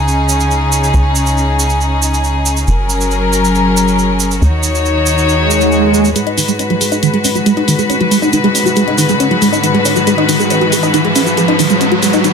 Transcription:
Already playing: analog synth bass C#2, string section C#3 C#4 D#4 G#4
0.08 shaker
0.29 shaker
0.40 shaker
0.51 shaker
0.72 shaker
0.84 shaker
0.94 analog synth bass C#2, shaker
1.15 shaker
1.26 shaker
1.37 shaker
1.59 shaker
1.70 shaker
1.81 shaker
2.02 shaker
2.14 shaker
2.24 shaker
2.46 shaker
2.57 shaker
2.67 analog synth bass F#1, string section F#3 C#4 A#4, shaker
2.90 shaker
3.01 shaker
3.11 shaker
3.33 shaker
3.44 shaker
3.55 shaker
3.77 shaker
3.88 shaker
3.99 shaker
4.20 shaker
4.31 shaker
4.42 analog synth bass D#2, string section D#3 D#4 F#4 C#5, shaker
4.63 shaker
4.75 shaker
4.85 shaker
5.06 shaker
5.18 shaker
5.29 swell, shaker
5.50 shaker
5.61 shaker
5.72 shaker
5.94 shaker
6.05 shaker
6.16 string section G#2 G#3 F#4 B4, synth arpeggio sound G#3, closed hi-hat, riser, shaker
6.27 synth arpeggio sound D#4, closed hi-hat
6.38 synth arpeggio sound D#3, open hi-hat, shaker
6.48 synth arpeggio sound G#3, closed hi-hat, shaker
6.59 synth arpeggio sound C#4, closed hi-hat, shaker
6.70 synth arpeggio sound F#3, closed hi-hat
6.81 synth arpeggio sound G#3, open hi-hat, shaker
6.92 synth arpeggio sound D#4, closed hi-hat, shaker
7.03 synth arpeggio sound D#3, closed hi-hat, shaker
7.14 synth arpeggio sound G#3, closed hi-hat
7.24 synth arpeggio sound C#4, open hi-hat, shaker
7.35 synth arpeggio sound F#3, closed hi-hat, shaker
7.46 synth arpeggio sound G#3, closed hi-hat, shaker
7.57 synth arpeggio sound D#4, closed hi-hat
7.68 synth arpeggio sound D#3, open hi-hat, shaker
7.79 synth arpeggio sound G#3, closed hi-hat, shaker
7.90 synth arpeggio sound C#4, closed hi-hat, shaker
8.00 synth arpeggio sound F#3, closed hi-hat
8.11 synth arpeggio sound G#3, open hi-hat, shaker
8.22 synth arpeggio sound D#4, closed hi-hat, shaker
8.33 synth arpeggio sound D#3, closed hi-hat, shaker
8.44 synth arpeggio sound G#3, closed hi-hat
8.55 synth arpeggio sound C#4, open hi-hat, shaker
8.66 synth arpeggio sound F#3, closed hi-hat, shaker
8.76 synth arpeggio sound G#3, closed hi-hat, shaker
8.88 synth arpeggio sound D#4, closed hi-hat
8.98 synth arpeggio sound D#3, open hi-hat, shaker
9.09 synth arpeggio sound G#3, closed hi-hat, shaker
9.20 synth arpeggio sound C#4, closed hi-hat, shaker
9.31 synth arpeggio sound F#3, closed hi-hat
9.42 synth arpeggio sound G#3, open hi-hat, shaker
9.53 synth arpeggio sound D#4, closed hi-hat, shaker
9.63 synth arpeggio sound D#3, closed hi-hat, shaker
9.74 synth arpeggio sound G#3, closed hi-hat
9.85 synth arpeggio sound C#4, open hi-hat, shaker
9.96 synth arpeggio sound F#3, closed hi-hat, shaker
10.07 synth arpeggio sound G#3, closed hi-hat, shaker
10.18 synth arpeggio sound D#4, closed hi-hat
10.29 synth arpeggio sound D#3, open hi-hat, shaker
10.40 synth arpeggio sound G#3, closed hi-hat, shaker
10.50 synth arpeggio sound C#4, closed hi-hat, shaker
10.61 synth arpeggio sound F#3, closed hi-hat
10.72 synth arpeggio sound G#3, open hi-hat, shaker
10.83 synth arpeggio sound D#4, shaker
10.94 synth arpeggio sound D#3, closed hi-hat, shaker
11.05 synth arpeggio sound G#3, closed hi-hat
11.16 synth arpeggio sound C#4, open hi-hat, shaker
11.26 synth arpeggio sound F#3, closed hi-hat, shaker
11.37 synth arpeggio sound G#3, closed hi-hat, shaker
11.48 synth arpeggio sound D#4, closed hi-hat
11.59 synth arpeggio sound D#3, open hi-hat, shaker
11.70 synth arpeggio sound G#3, closed hi-hat, shaker
11.81 synth arpeggio sound C#4, closed hi-hat, shaker
11.92 synth arpeggio sound F#3, closed hi-hat
12.02 synth arpeggio sound G#3, open hi-hat, shaker
12.13 synth arpeggio sound D#4, closed hi-hat, shaker
12.24 synth arpeggio sound D#3, closed hi-hat, shaker

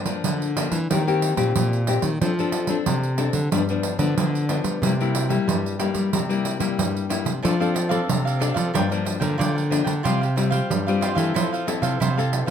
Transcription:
Already playing: nylon-string guitar G2 G3
0.05 nylon-string guitar F3 A#3 D4, pandeiro
0.24 nylon-string guitar D3, pandeiro
0.42 pandeiro
0.56 nylon-string guitar F3 A#3 D4, pandeiro
0.72 nylon-string guitar E3, pandeiro
0.90 nylon-string guitar D#3 A#3 C4 G4, pandeiro
1.07 nylon-string guitar A#3 C4 G4, pandeiro
1.22 pandeiro
1.36 nylon-string guitar A#2 A#3 C4 G4, pandeiro
1.56 nylon-string guitar A#2, pandeiro
1.73 pandeiro
1.87 nylon-string guitar A#3 C4 G4, pandeiro
2.02 nylon-string guitar D#3, pandeiro
2.21 nylon-string guitar F3 C4 D4 A4, pandeiro
2.39 nylon-string guitar C4 D4 A4, pandeiro
2.52 pandeiro
2.67 nylon-string guitar C4 D4 A4, pandeiro
2.86 nylon-string guitar C3, pandeiro
3.03 pandeiro
3.18 nylon-string guitar C4 D4 A4, pandeiro
3.33 nylon-string guitar D3, pandeiro
3.51 nylon-string guitar G2 F3 G3 B3 D4, pandeiro
3.69 nylon-string guitar F3 B3 D4, pandeiro
3.83 pandeiro
3.99 nylon-string guitar D3 F3 B3 D4, pandeiro
4.17 nylon-string guitar D3, pandeiro
4.35 pandeiro
4.49 nylon-string guitar F3 B3 D4, pandeiro
4.64 nylon-string guitar G3, pandeiro
4.82 nylon-string guitar C3 G3 A#3 E4, pandeiro
5.00 nylon-string guitar G3 A#3 E4, pandeiro
5.15 pandeiro
5.29 nylon-string guitar G3 A#3 E4, pandeiro
5.48 nylon-string guitar G2 G3, pandeiro
5.66 pandeiro
5.79 nylon-string guitar G3 A#3 E4, pandeiro
5.95 nylon-string guitar G3, pandeiro
6.13 nylon-string guitar C3 G3, pandeiro
6.29 nylon-string guitar G3 A#3 E4, pandeiro
6.45 pandeiro
6.59 nylon-string guitar G3 A#3 E4, pandeiro
6.78 nylon-string guitar G2 G3, pandeiro
6.97 pandeiro
7.09 nylon-string guitar G3 A#3 E4, pandeiro
7.25 nylon-string guitar C3, pandeiro
7.43 nylon-string guitar F3 C4 D4 A4, cavaquinho D4 A4 D5 F5, pandeiro
7.60 nylon-string guitar C4 D4 A4, cavaquinho A4 D5 F5, pandeiro
7.74 muted cavaquinho stroke, pandeiro
7.89 nylon-string guitar C4 D4 A4, cavaquinho A4 D5 F5, pandeiro
8.08 nylon-string guitar C3, pandeiro
8.25 cavaquinho A4 D5 F5, pandeiro
8.39 nylon-string guitar C4 D4 A4, cavaquinho D4 A4 D5 F5, pandeiro
8.54 nylon-string guitar F3, cavaquinho A4 D5 F5, pandeiro
8.74 nylon-string guitar G2 F3 G3 A#3 D4, cavaquinho F4 A#4 D5 G5, pandeiro
8.90 nylon-string guitar F3 A#3 D4, cavaquinho A#4 D5 G5, pandeiro
9.05 muted cavaquinho stroke, pandeiro
9.20 nylon-string guitar D3 F3 A#3 D4, cavaquinho A#4 D5 G5, pandeiro
9.38 nylon-string guitar D3, cavaquinho F4 A#4 D5 G5, pandeiro
9.55 cavaquinho A#4 D5 G5, pandeiro
9.70 nylon-string guitar F3 A#3 D4, pandeiro
9.84 nylon-string guitar D3, cavaquinho A#4 D5 G5, pandeiro
10.03 nylon-string guitar C3 G3 C4 F4, cavaquinho F4 G4 C5 F5, pandeiro
10.21 cavaquinho G4 C5 F5, pandeiro
10.36 nylon-string guitar G3 C4 F4, muted cavaquinho stroke, pandeiro
10.51 cavaquinho G4 C5 F5, pandeiro
10.70 nylon-string guitar G2 G3, pandeiro
10.87 nylon-string guitar G3 C4 F4, cavaquinho G4 C5 F5, pandeiro
11.01 cavaquinho F4 G4 C5 F5, pandeiro
11.15 nylon-string guitar E3 C4 E4 A4, cavaquinho G4 C5 F5, pandeiro
11.34 nylon-string guitar F3, cavaquinho E4 A4 C5 F5, pandeiro
11.53 cavaquinho A4 C5 F5, pandeiro
11.67 nylon-string guitar C4 E4 A4, muted cavaquinho stroke, pandeiro
11.82 nylon-string guitar C3, cavaquinho A4 C5 F5, pandeiro
12.00 nylon-string guitar C3, cavaquinho E4 A4 C5 F5, pandeiro
12.17 nylon-string guitar C4 E4 A4, cavaquinho A4 C5 F5, pandeiro
12.33 pandeiro
12.46 nylon-string guitar F3, cavaquinho C5 F5

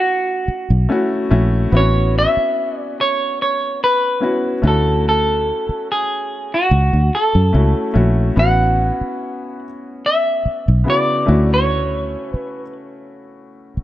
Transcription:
Already playing: grand piano F#4, clean electric guitar F#4
0.48 muted fingered electric bass stroke
0.70 fingered electric bass B1
0.89 grand piano A3 C#4 E4 F#4
1.31 fingered electric bass A#1, grand piano A3 C#4 E4 F#4
1.72 fingered electric bass A1, grand piano B3 C4 E4 F#4
1.77 grand piano C#4, clean electric guitar C#5
2.19 clean electric guitar E5
2.37 muted fingered electric bass stroke
2.79 clean electric guitar D5
3.01 clean electric guitar C#5
3.42 clean electric guitar C#5
3.84 clean electric guitar B4
4.20 grand piano B3 C#4 E4 F#4
4.62 fingered electric bass D2, grand piano A3 C#4 E4 F#4
4.67 clean electric guitar A4
5.09 clean electric guitar A4
5.69 muted fingered electric bass stroke
5.92 clean electric guitar G#4
6.54 clean electric guitar F#4
6.71 fingered electric bass C#2
6.93 fingered electric bass D2
7.15 clean electric guitar A4
7.35 fingered electric bass F#2
7.53 fingered electric bass C#2, grand piano A3 C#4 E4 F#4
7.94 fingered electric bass A#1, grand piano A3 C#4 E4 F#4
8.36 fingered electric bass A1, grand piano B3 C#4 E4 F#4, clean electric guitar F#5
9.01 muted fingered electric bass stroke
10.06 clean electric guitar E5
10.45 muted fingered electric bass stroke
10.68 fingered electric bass B1
10.84 grand piano C#3 B3 E4 F#4
10.90 clean electric guitar D5
11.26 fingered electric bass D2, grand piano A3 C#4 E4 F#4
11.54 clean electric guitar C#5
12.34 clean electric guitar B4, muted fingered electric bass stroke
13.77 muted fingered electric bass stroke

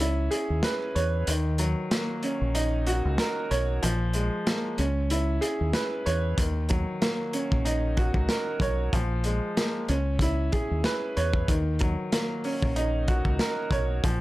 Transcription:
Already playing: fingered electric bass C#2, upright piano C#4
0.00 upright piano E4, closed hi-hat
0.31 upright piano G#4, closed hi-hat
0.50 fingered electric bass D#2
0.63 upright piano B4, snare, closed hi-hat
0.95 fingered electric bass E2, upright piano C#5, closed hi-hat
1.27 fingered electric bass D#2, upright piano D#3, closed hi-hat
1.58 upright piano F#3, closed hi-hat
1.91 upright piano A#3, snare, closed hi-hat
2.23 upright piano C#4, closed hi-hat
2.42 fingered electric bass A#1
2.55 upright piano D#4, closed hi-hat
2.86 upright piano F#4, closed hi-hat
3.05 fingered electric bass C#2
3.18 upright piano A#4, snare, closed hi-hat
3.51 fingered electric bass B1, upright piano C#5, closed hi-hat
3.82 fingered electric bass A#1, upright piano F3, closed hi-hat
4.13 upright piano G#3, closed hi-hat
4.47 upright piano A#3, snare, closed hi-hat
4.78 fingered electric bass C#2, upright piano C#4, closed hi-hat
5.10 upright piano E4, closed hi-hat
5.41 upright piano G#4, closed hi-hat
5.61 fingered electric bass D#2
5.73 upright piano B4, snare, closed hi-hat
6.06 fingered electric bass E2, upright piano C#5, closed hi-hat
6.38 fingered electric bass D#2, upright piano D#3, kick, closed hi-hat
6.69 upright piano F#3, kick, closed hi-hat
7.02 upright piano A#3, snare, closed hi-hat
7.33 upright piano C#4, closed hi-hat
7.52 fingered electric bass A#1, kick
7.65 upright piano D#4, closed hi-hat
7.97 upright piano F#4, kick, closed hi-hat
8.14 fingered electric bass C#2, kick
8.29 upright piano A#4, snare, closed hi-hat
8.60 fingered electric bass B1, upright piano C#5, kick, closed hi-hat
8.93 fingered electric bass A#1, upright piano F3, kick, closed hi-hat
9.24 upright piano G#3, closed hi-hat
9.57 upright piano A#3, snare, closed hi-hat
9.88 fingered electric bass C#2, upright piano C#4, closed hi-hat
10.19 upright piano E4, kick, closed hi-hat
10.52 upright piano G#4, kick, closed hi-hat
10.71 fingered electric bass D#2
10.84 upright piano B4, snare, closed hi-hat
11.17 fingered electric bass E2, upright piano C#5, closed hi-hat
11.34 kick
11.48 fingered electric bass D#2, upright piano D#3, kick, closed hi-hat
11.79 upright piano F#3, kick, closed hi-hat
12.12 upright piano A#3, snare, closed hi-hat
12.44 upright piano C#4, open hi-hat
12.62 fingered electric bass A#1, kick
12.76 upright piano D#4, closed hi-hat
13.08 upright piano F#4, kick, closed hi-hat
13.25 fingered electric bass C#2, kick
13.39 upright piano A#4, snare, closed hi-hat
13.71 fingered electric bass B1, upright piano C#5, kick, closed hi-hat
14.04 fingered electric bass A#1, upright piano F3, kick, closed hi-hat

